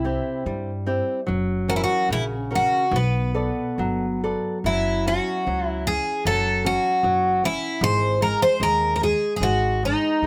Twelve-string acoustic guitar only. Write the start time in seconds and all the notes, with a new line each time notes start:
Already playing: E4
1.70 F#4
1.76 E4
1.84 F#4
2.13 E4
2.55 F#4
2.96 B3
4.66 E4
5.08 F#4
5.67 E4
5.87 G#4
6.27 A4
6.66 F#4
7.45 E4
7.84 C5
8.22 A#4
8.42 C5
8.63 A#4
8.96 A#4
9.03 G#4
9.36 G#4
9.43 F#4
9.85 D#4